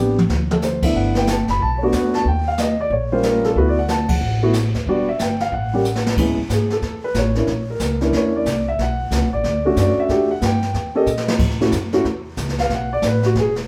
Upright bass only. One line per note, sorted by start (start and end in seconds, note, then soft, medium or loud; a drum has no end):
0.00 0.26 A1 medium
0.29 0.91 D2 medium
0.94 1.44 G1 medium
1.48 1.59 F#1 medium
1.60 1.90 B1 medium
1.93 2.23 E2 medium
2.25 2.87 D#2 medium
2.90 3.53 A#1 medium
3.56 4.18 D2 medium
4.21 4.71 A1 medium
4.74 4.86 D#2 medium
4.87 5.17 E1 medium
5.20 5.50 G1 medium
5.52 6.14 A1 medium
6.17 6.36 A2 medium
6.37 muted upright bass stroke soft
6.49 6.81 G#2 medium
6.82 7.14 E2 medium
7.14 7.47 A1 medium
7.47 7.79 A#1 medium
7.80 8.12 C#2 medium
8.12 8.45 E2 medium
8.46 8.78 C2 medium
8.78 9.10 B1 medium
9.11 9.22 C#2 medium
9.22 9.33 B1 medium
9.34 9.43 A1 medium
9.44 9.76 D2 medium
9.76 9.96 F#2 medium
9.97 muted upright bass stroke soft
10.09 10.41 E2 medium
10.42 10.73 G2 medium
10.74 11.06 D#2 medium
11.06 11.38 A#2 medium
11.39 11.71 A2 medium
11.72 12.04 F#2 medium
12.04 12.36 E2 medium
12.37 12.69 C#2 medium
12.70 13.02 B1 medium
13.02 13.34 A1 medium
13.35 13.67 E1 medium